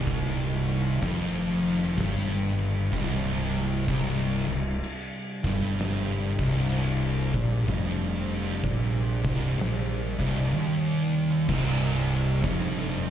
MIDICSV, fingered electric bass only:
0, 0, Header, 1, 2, 480
1, 0, Start_track
1, 0, Key_signature, -3, "minor"
1, 0, Tempo, 950872
1, 35, Time_signature, 4, 2, 24, 8
1, 6613, End_track
2, 0, Start_track
2, 0, Title_t, "Fingered electric bass"
2, 0, Program_c, 0, 33
2, 0, Note_on_c, 0, 24, 96
2, 496, Note_off_c, 0, 24, 0
2, 517, Note_on_c, 0, 29, 88
2, 976, Note_off_c, 0, 29, 0
2, 1000, Note_on_c, 0, 31, 92
2, 1458, Note_off_c, 0, 31, 0
2, 1480, Note_on_c, 0, 24, 93
2, 1938, Note_off_c, 0, 24, 0
2, 1960, Note_on_c, 0, 24, 99
2, 2245, Note_off_c, 0, 24, 0
2, 2262, Note_on_c, 0, 24, 75
2, 2423, Note_off_c, 0, 24, 0
2, 2749, Note_on_c, 0, 31, 92
2, 3206, Note_off_c, 0, 31, 0
2, 3225, Note_on_c, 0, 24, 90
2, 3685, Note_off_c, 0, 24, 0
2, 3706, Note_on_c, 0, 34, 97
2, 3866, Note_off_c, 0, 34, 0
2, 3880, Note_on_c, 0, 29, 90
2, 4339, Note_off_c, 0, 29, 0
2, 4360, Note_on_c, 0, 34, 92
2, 4646, Note_off_c, 0, 34, 0
2, 4667, Note_on_c, 0, 24, 86
2, 4827, Note_off_c, 0, 24, 0
2, 4832, Note_on_c, 0, 34, 93
2, 5122, Note_off_c, 0, 34, 0
2, 5148, Note_on_c, 0, 24, 93
2, 5308, Note_off_c, 0, 24, 0
2, 5800, Note_on_c, 0, 24, 101
2, 6260, Note_off_c, 0, 24, 0
2, 6281, Note_on_c, 0, 29, 102
2, 6613, Note_off_c, 0, 29, 0
2, 6613, End_track
0, 0, End_of_file